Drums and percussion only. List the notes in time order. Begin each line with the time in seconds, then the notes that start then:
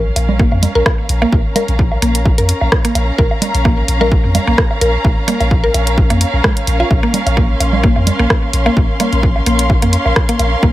0.16 open hi-hat, low woodblock
0.29 low conga
0.39 kick
0.52 low woodblock
0.63 open hi-hat, low conga
0.86 kick, cross-stick, low woodblock
1.09 open hi-hat
1.22 low woodblock
1.32 kick
1.56 open hi-hat, low conga, low woodblock
1.68 open hi-hat
1.79 kick
1.92 low woodblock
2.02 open hi-hat
2.15 closed hi-hat
2.25 kick, low woodblock
2.38 closed hi-hat
2.49 open hi-hat
2.61 low woodblock
2.72 kick, cross-stick
2.85 closed hi-hat
2.95 open hi-hat, low woodblock
3.19 kick
3.31 low woodblock
3.42 open hi-hat, low conga
3.55 open hi-hat
3.65 kick, low woodblock
3.88 open hi-hat
4.01 low conga, low woodblock
4.12 kick
4.35 open hi-hat, low conga, low woodblock
4.58 kick, cross-stick
4.71 low woodblock
4.81 open hi-hat
5.05 kick, low woodblock
5.28 open hi-hat, low conga
5.40 open hi-hat, low woodblock
5.51 kick
5.74 open hi-hat, low woodblock
5.87 closed hi-hat
5.98 kick
6.10 closed hi-hat, low woodblock
6.21 open hi-hat
6.44 kick, cross-stick, low woodblock
6.57 closed hi-hat
6.67 open hi-hat
6.80 low woodblock
6.91 kick, low woodblock
7.14 open hi-hat, low conga
7.27 open hi-hat, low woodblock
7.37 kick
7.60 open hi-hat, low woodblock
7.73 low conga
7.84 kick
7.96 low woodblock
8.07 open hi-hat, low conga
8.30 kick, cross-stick, low woodblock
8.53 open hi-hat
8.66 low woodblock
8.77 kick
9.00 open hi-hat, low conga, low woodblock
9.13 open hi-hat
9.23 kick
9.36 low woodblock
9.46 open hi-hat
9.59 closed hi-hat
9.70 kick, low woodblock
9.82 closed hi-hat
9.93 open hi-hat
10.06 low woodblock
10.16 kick, cross-stick
10.29 closed hi-hat
10.39 open hi-hat, low woodblock
10.63 kick